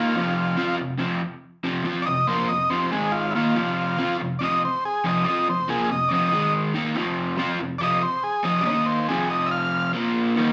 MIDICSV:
0, 0, Header, 1, 3, 480
1, 0, Start_track
1, 0, Tempo, 425230
1, 170, Time_signature, 4, 2, 24, 8
1, 11883, End_track
2, 0, Start_track
2, 0, Title_t, "Transistor combo organ"
2, 0, Program_c, 0, 18
2, 0, Note_on_c, 0, 65, 93
2, 857, Note_off_c, 0, 65, 0
2, 2283, Note_on_c, 0, 74, 74
2, 2316, Note_off_c, 0, 74, 0
2, 2323, Note_on_c, 0, 75, 106
2, 2562, Note_off_c, 0, 75, 0
2, 2567, Note_on_c, 0, 72, 93
2, 2803, Note_on_c, 0, 75, 100
2, 2804, Note_off_c, 0, 72, 0
2, 3042, Note_off_c, 0, 75, 0
2, 3050, Note_on_c, 0, 72, 89
2, 3286, Note_off_c, 0, 72, 0
2, 3294, Note_on_c, 0, 68, 81
2, 3519, Note_on_c, 0, 65, 95
2, 3529, Note_off_c, 0, 68, 0
2, 3735, Note_on_c, 0, 64, 65
2, 3761, Note_off_c, 0, 65, 0
2, 3767, Note_off_c, 0, 64, 0
2, 3780, Note_on_c, 0, 65, 96
2, 4711, Note_off_c, 0, 65, 0
2, 4955, Note_on_c, 0, 74, 77
2, 4983, Note_off_c, 0, 74, 0
2, 5006, Note_on_c, 0, 75, 108
2, 5226, Note_off_c, 0, 75, 0
2, 5247, Note_on_c, 0, 72, 93
2, 5466, Note_off_c, 0, 72, 0
2, 5478, Note_on_c, 0, 68, 97
2, 5702, Note_off_c, 0, 68, 0
2, 5719, Note_on_c, 0, 75, 84
2, 5915, Note_on_c, 0, 74, 69
2, 5942, Note_off_c, 0, 75, 0
2, 5943, Note_off_c, 0, 74, 0
2, 5970, Note_on_c, 0, 75, 94
2, 6188, Note_off_c, 0, 75, 0
2, 6202, Note_on_c, 0, 72, 93
2, 6424, Note_off_c, 0, 72, 0
2, 6433, Note_on_c, 0, 68, 90
2, 6659, Note_off_c, 0, 68, 0
2, 6677, Note_on_c, 0, 75, 101
2, 6870, Note_on_c, 0, 74, 69
2, 6899, Note_off_c, 0, 74, 0
2, 6901, Note_off_c, 0, 75, 0
2, 6929, Note_on_c, 0, 75, 101
2, 7380, Note_off_c, 0, 75, 0
2, 8787, Note_on_c, 0, 74, 82
2, 8816, Note_off_c, 0, 74, 0
2, 8841, Note_on_c, 0, 75, 113
2, 9062, Note_off_c, 0, 75, 0
2, 9063, Note_on_c, 0, 72, 94
2, 9293, Note_off_c, 0, 72, 0
2, 9296, Note_on_c, 0, 68, 97
2, 9529, Note_off_c, 0, 68, 0
2, 9537, Note_on_c, 0, 75, 93
2, 9720, Note_on_c, 0, 74, 77
2, 9755, Note_off_c, 0, 74, 0
2, 9757, Note_off_c, 0, 75, 0
2, 9771, Note_on_c, 0, 75, 112
2, 10002, Note_on_c, 0, 72, 92
2, 10006, Note_off_c, 0, 75, 0
2, 10241, Note_off_c, 0, 72, 0
2, 10258, Note_on_c, 0, 68, 90
2, 10489, Note_off_c, 0, 68, 0
2, 10499, Note_on_c, 0, 75, 99
2, 10681, Note_on_c, 0, 76, 71
2, 10714, Note_off_c, 0, 76, 0
2, 10729, Note_off_c, 0, 75, 0
2, 10737, Note_on_c, 0, 77, 104
2, 11199, Note_off_c, 0, 77, 0
2, 11883, End_track
3, 0, Start_track
3, 0, Title_t, "Overdriven electric guitar"
3, 0, Program_c, 1, 29
3, 0, Note_on_c, 1, 51, 92
3, 0, Note_on_c, 1, 58, 103
3, 0, Note_on_c, 1, 63, 103
3, 161, Note_off_c, 1, 51, 0
3, 166, Note_off_c, 1, 58, 0
3, 169, Note_off_c, 1, 63, 0
3, 173, Note_on_c, 1, 41, 87
3, 177, Note_on_c, 1, 48, 95
3, 179, Note_on_c, 1, 53, 101
3, 628, Note_off_c, 1, 53, 0
3, 637, Note_off_c, 1, 48, 0
3, 641, Note_on_c, 1, 53, 81
3, 646, Note_off_c, 1, 41, 0
3, 651, Note_on_c, 1, 60, 102
3, 659, Note_on_c, 1, 65, 98
3, 880, Note_off_c, 1, 53, 0
3, 884, Note_on_c, 1, 41, 60
3, 885, Note_off_c, 1, 60, 0
3, 889, Note_off_c, 1, 65, 0
3, 894, Note_on_c, 1, 48, 69
3, 1080, Note_off_c, 1, 41, 0
3, 1085, Note_off_c, 1, 48, 0
3, 1108, Note_on_c, 1, 41, 90
3, 1115, Note_on_c, 1, 48, 88
3, 1129, Note_on_c, 1, 53, 101
3, 1354, Note_off_c, 1, 41, 0
3, 1357, Note_off_c, 1, 48, 0
3, 1364, Note_off_c, 1, 53, 0
3, 1847, Note_on_c, 1, 41, 89
3, 1851, Note_on_c, 1, 48, 97
3, 1858, Note_on_c, 1, 53, 107
3, 2067, Note_off_c, 1, 53, 0
3, 2076, Note_off_c, 1, 48, 0
3, 2080, Note_on_c, 1, 53, 96
3, 2084, Note_off_c, 1, 41, 0
3, 2089, Note_on_c, 1, 60, 94
3, 2101, Note_on_c, 1, 65, 100
3, 2321, Note_off_c, 1, 53, 0
3, 2325, Note_off_c, 1, 60, 0
3, 2331, Note_off_c, 1, 65, 0
3, 2337, Note_on_c, 1, 41, 56
3, 2347, Note_on_c, 1, 48, 70
3, 2528, Note_off_c, 1, 41, 0
3, 2533, Note_off_c, 1, 48, 0
3, 2565, Note_on_c, 1, 46, 91
3, 2579, Note_on_c, 1, 53, 96
3, 2587, Note_on_c, 1, 58, 105
3, 2804, Note_off_c, 1, 46, 0
3, 2810, Note_off_c, 1, 53, 0
3, 2814, Note_off_c, 1, 58, 0
3, 2818, Note_on_c, 1, 41, 61
3, 2822, Note_on_c, 1, 48, 69
3, 3009, Note_off_c, 1, 41, 0
3, 3011, Note_off_c, 1, 48, 0
3, 3045, Note_on_c, 1, 41, 94
3, 3054, Note_on_c, 1, 48, 108
3, 3066, Note_on_c, 1, 53, 101
3, 3284, Note_off_c, 1, 41, 0
3, 3288, Note_off_c, 1, 48, 0
3, 3290, Note_on_c, 1, 44, 82
3, 3295, Note_off_c, 1, 53, 0
3, 3295, Note_on_c, 1, 51, 88
3, 3299, Note_on_c, 1, 56, 93
3, 3767, Note_off_c, 1, 44, 0
3, 3769, Note_off_c, 1, 51, 0
3, 3771, Note_off_c, 1, 56, 0
3, 3784, Note_on_c, 1, 51, 82
3, 3789, Note_on_c, 1, 58, 99
3, 3790, Note_on_c, 1, 63, 103
3, 4007, Note_off_c, 1, 51, 0
3, 4007, Note_on_c, 1, 41, 89
3, 4012, Note_on_c, 1, 48, 92
3, 4014, Note_off_c, 1, 58, 0
3, 4017, Note_off_c, 1, 63, 0
3, 4019, Note_on_c, 1, 53, 98
3, 4480, Note_off_c, 1, 53, 0
3, 4486, Note_off_c, 1, 41, 0
3, 4488, Note_off_c, 1, 48, 0
3, 4494, Note_on_c, 1, 53, 93
3, 4505, Note_on_c, 1, 60, 104
3, 4510, Note_on_c, 1, 65, 106
3, 4729, Note_off_c, 1, 53, 0
3, 4735, Note_off_c, 1, 60, 0
3, 4737, Note_off_c, 1, 65, 0
3, 4744, Note_on_c, 1, 41, 58
3, 4753, Note_on_c, 1, 48, 66
3, 4933, Note_off_c, 1, 41, 0
3, 4938, Note_off_c, 1, 48, 0
3, 4976, Note_on_c, 1, 41, 88
3, 4980, Note_on_c, 1, 48, 94
3, 4984, Note_on_c, 1, 53, 94
3, 5210, Note_off_c, 1, 41, 0
3, 5212, Note_off_c, 1, 48, 0
3, 5214, Note_off_c, 1, 53, 0
3, 5691, Note_on_c, 1, 41, 94
3, 5705, Note_on_c, 1, 53, 105
3, 5706, Note_on_c, 1, 48, 96
3, 5923, Note_off_c, 1, 53, 0
3, 5928, Note_off_c, 1, 41, 0
3, 5932, Note_off_c, 1, 48, 0
3, 5937, Note_on_c, 1, 53, 93
3, 5941, Note_on_c, 1, 60, 103
3, 5953, Note_on_c, 1, 65, 93
3, 6171, Note_off_c, 1, 53, 0
3, 6173, Note_off_c, 1, 60, 0
3, 6179, Note_off_c, 1, 65, 0
3, 6183, Note_on_c, 1, 41, 62
3, 6193, Note_on_c, 1, 48, 64
3, 6373, Note_off_c, 1, 41, 0
3, 6378, Note_off_c, 1, 48, 0
3, 6419, Note_on_c, 1, 46, 90
3, 6425, Note_on_c, 1, 53, 97
3, 6433, Note_on_c, 1, 58, 102
3, 6652, Note_off_c, 1, 46, 0
3, 6655, Note_off_c, 1, 53, 0
3, 6657, Note_on_c, 1, 41, 63
3, 6659, Note_off_c, 1, 58, 0
3, 6665, Note_on_c, 1, 48, 70
3, 6850, Note_off_c, 1, 41, 0
3, 6854, Note_off_c, 1, 48, 0
3, 6899, Note_on_c, 1, 41, 92
3, 6911, Note_on_c, 1, 48, 109
3, 6919, Note_on_c, 1, 53, 104
3, 7130, Note_off_c, 1, 41, 0
3, 7132, Note_off_c, 1, 48, 0
3, 7135, Note_on_c, 1, 44, 88
3, 7137, Note_on_c, 1, 51, 91
3, 7142, Note_off_c, 1, 53, 0
3, 7148, Note_on_c, 1, 56, 101
3, 7601, Note_off_c, 1, 51, 0
3, 7610, Note_off_c, 1, 44, 0
3, 7615, Note_on_c, 1, 51, 94
3, 7616, Note_off_c, 1, 56, 0
3, 7625, Note_on_c, 1, 58, 91
3, 7626, Note_on_c, 1, 63, 112
3, 7848, Note_on_c, 1, 41, 97
3, 7850, Note_off_c, 1, 51, 0
3, 7855, Note_off_c, 1, 58, 0
3, 7855, Note_off_c, 1, 63, 0
3, 7858, Note_on_c, 1, 48, 104
3, 7863, Note_on_c, 1, 53, 97
3, 8308, Note_off_c, 1, 53, 0
3, 8317, Note_off_c, 1, 48, 0
3, 8321, Note_on_c, 1, 53, 102
3, 8326, Note_off_c, 1, 41, 0
3, 8336, Note_on_c, 1, 60, 101
3, 8336, Note_on_c, 1, 65, 112
3, 8563, Note_off_c, 1, 53, 0
3, 8570, Note_off_c, 1, 60, 0
3, 8570, Note_off_c, 1, 65, 0
3, 8576, Note_on_c, 1, 41, 62
3, 8581, Note_on_c, 1, 48, 65
3, 8769, Note_off_c, 1, 41, 0
3, 8772, Note_off_c, 1, 48, 0
3, 8808, Note_on_c, 1, 41, 88
3, 8817, Note_on_c, 1, 53, 107
3, 8818, Note_on_c, 1, 48, 108
3, 9046, Note_off_c, 1, 41, 0
3, 9050, Note_off_c, 1, 48, 0
3, 9050, Note_off_c, 1, 53, 0
3, 9521, Note_on_c, 1, 41, 100
3, 9528, Note_on_c, 1, 48, 104
3, 9535, Note_on_c, 1, 53, 111
3, 9762, Note_off_c, 1, 41, 0
3, 9766, Note_off_c, 1, 48, 0
3, 9766, Note_on_c, 1, 51, 97
3, 9769, Note_off_c, 1, 53, 0
3, 9769, Note_on_c, 1, 58, 100
3, 9778, Note_on_c, 1, 63, 103
3, 10243, Note_off_c, 1, 51, 0
3, 10244, Note_off_c, 1, 58, 0
3, 10249, Note_off_c, 1, 63, 0
3, 10256, Note_on_c, 1, 41, 88
3, 10263, Note_on_c, 1, 48, 105
3, 10266, Note_on_c, 1, 53, 100
3, 11203, Note_off_c, 1, 53, 0
3, 11205, Note_off_c, 1, 41, 0
3, 11205, Note_off_c, 1, 48, 0
3, 11210, Note_on_c, 1, 46, 96
3, 11216, Note_on_c, 1, 53, 97
3, 11228, Note_on_c, 1, 58, 102
3, 11681, Note_off_c, 1, 46, 0
3, 11684, Note_off_c, 1, 53, 0
3, 11690, Note_off_c, 1, 58, 0
3, 11701, Note_on_c, 1, 51, 92
3, 11711, Note_on_c, 1, 55, 94
3, 11716, Note_on_c, 1, 58, 104
3, 11726, Note_on_c, 1, 63, 92
3, 11883, Note_off_c, 1, 51, 0
3, 11883, Note_off_c, 1, 55, 0
3, 11883, Note_off_c, 1, 58, 0
3, 11883, Note_off_c, 1, 63, 0
3, 11883, End_track
0, 0, End_of_file